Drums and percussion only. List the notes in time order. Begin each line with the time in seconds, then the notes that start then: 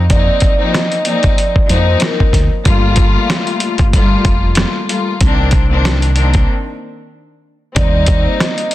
0.10 kick, closed hi-hat
0.40 kick, closed hi-hat
0.74 snare, closed hi-hat
0.92 closed hi-hat
1.05 closed hi-hat
1.23 kick, closed hi-hat
1.38 closed hi-hat
1.56 kick
1.69 closed hi-hat
2.00 snare, closed hi-hat
2.20 kick
2.33 kick, snare, closed hi-hat
2.65 kick, closed hi-hat
2.96 kick, closed hi-hat
3.30 snare, closed hi-hat
3.47 closed hi-hat
3.60 closed hi-hat
3.78 kick, closed hi-hat
3.93 kick, closed hi-hat
4.25 kick, closed hi-hat
4.55 snare, closed hi-hat
4.89 closed hi-hat
5.21 kick, closed hi-hat
5.51 kick, closed hi-hat
5.85 snare, closed hi-hat
6.02 closed hi-hat
6.16 closed hi-hat
6.34 kick, closed hi-hat
7.76 kick, closed hi-hat
8.06 kick, closed hi-hat
8.40 snare, closed hi-hat
8.58 closed hi-hat
8.71 closed hi-hat